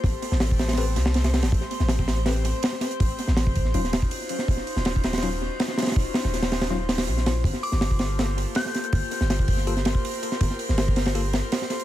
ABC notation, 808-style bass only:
X:1
M:4/4
L:1/16
Q:1/4=162
K:Aphr
V:1 name="808-style bass" clef=bass
A,,, z2 A,,,6- A,,, C,,4- C,, A,,, | A,,, z2 A,,,8 z4 z | A,,, z2 A,,,4- A,,, _E,,,3 z4 z | _E,,, z2 E,,,8 z4 z |
_E,,, z2 E,,,8- E,,, B,,,4 | G,,, z2 G,,,8 z4 z | G,,, z2 G,,,8 z4 z | G,,, z2 G,,,8 z4 z |]